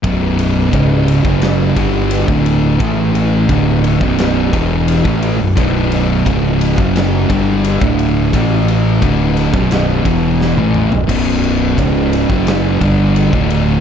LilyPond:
<<
  \new Staff \with { instrumentName = "Distorted electric guitar" } { \clef bass \time 4/4 \key b \minor \tempo 4 = 87 <b,, fis, b,>4 <cis, gis, cis>8. <fis, cis fis>8. <g, d g>8. <d, a, d>8. | <a, e a>4 <d, a, d>8. <b,, fis, b,>8. <e, b, e>8. <a, e a>8 <b,, fis,>16 | <b,, fis, b,>4 <cis, gis, cis>8. <fis, cis fis>8. <g, d g>8. <d, a, d>8. | <a, e a>4 <d, a, d>8. <b,, fis, b,>8. <e, b, e>8. <a, e a>8 <b,, fis,>16 |
<b,, fis, b,>4 <cis, gis, cis>8. <fis, cis fis>8. <g, d g>8. <d, a, d>8. | }
  \new Staff \with { instrumentName = "Distorted electric guitar" } { \clef bass \time 4/4 \key b \minor <b,, fis, b,>4 <cis, gis, cis>8. <fis, cis fis>8. <g, d g>8. <d, a, d>8. | <a, e a>4 <d, a, d>8. <b,, fis, b,>8. <e, b, e>8. <a, e a>8 <b,, fis,>16 | <b,, fis, b,>4 <cis, gis, cis>8. <fis, cis fis>8. <g, d g>8. <d, a, d>8. | <a, e a>4 <d, a, d>8. <b,, fis, b,>8. <e, b, e>8. <a, e a>8 <b,, fis,>16 |
<b,, fis, b,>4 <cis, gis, cis>8. <fis, cis fis>8. <g, d g>8. <d, a, d>8. | }
  \new Staff \with { instrumentName = "Distorted electric guitar" } { \clef bass \time 4/4 \key b \minor <b,, fis, b,>4 <cis, gis, cis>8. <fis, cis fis>8. <g, d g>8. <d, a, d>8. | <a, e a>4 <d, a, d>8. <b,, fis, b,>8. <e, b, e>8. <a, e a>8 <b,, fis,>16 | <b,, fis, b,>4 <cis, gis, cis>8. <fis, cis fis>8. <g, d g>8. <d, a, d>8. | <a, e a>4 <d, a, d>8. <b,, fis, b,>8. <e, b, e>8. <a, e a>8 <b,, fis,>16 |
<b,, fis, b,>4 <cis, gis, cis>8. <fis, cis fis>8. <g, d g>8. <d, a, d>8. | }
  \new Staff \with { instrumentName = "Fingered electric bass" } { \clef bass \time 4/4 \key b \minor b,,,4 cis,,8. fis,,8. g,,8. d,,8. | a,,4 d,,8. b,,,8. e,,8. a,,8 b,,,16 | b,,,4 cis,,8. fis,,8. g,,8. d,,8. | a,,4 d,,8. b,,,8. e,,8. a,,8 b,,,16 |
b,,,4 cis,,8. fis,,8. g,,8. d,,8. | }
  \new DrumStaff \with { instrumentName = "Drums" } \drummode { \time 4/4 <bd cymr>8 cymr8 <bd cymr>8 cymr16 bd16 <cymr sn>8 <bd cymr>8 cymr16 bd16 cymr8 | <bd cymr>8 cymr8 <bd cymr>8 cymr16 bd16 <cymr sn>8 <bd cymr>8 cymr16 bd16 cymr8 | <bd cymr>8 cymr8 <bd cymr>8 cymr16 bd16 <cymr sn>8 <bd cymr>8 cymr16 bd16 cymr8 | <bd cymr>8 cymr8 <bd cymr>8 <cymr sn>16 bd16 <cymr sn>8 <bd cymr>8 sn16 tommh16 toml16 tomfh16 |
<cymc bd cymr>8 cymr8 <bd cymr>8 cymr16 bd16 <cymr sn>8 <bd cymr>8 cymr16 bd16 cymr8 | }
>>